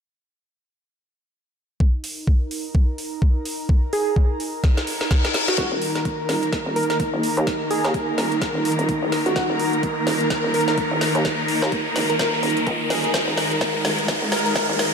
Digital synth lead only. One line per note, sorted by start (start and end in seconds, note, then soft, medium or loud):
3.93 4.14 G#4 medium
5.48 5.55 F#4 medium
5.58 5.67 F#4 medium
6.76 6.85 A#4 medium
6.90 6.96 A#4 medium
7.71 7.92 G#4 loud
9.26 9.32 F#4 medium
9.36 9.45 F#4 medium
10.54 10.63 A#4 medium
10.68 10.74 A#4 medium
12.10 12.16 A#4 medium
12.20 12.28 A#4 medium
12.90 12.99 G#4 medium
13.04 13.10 G#4 medium
14.32 14.41 A#4 medium
14.46 14.52 A#4 medium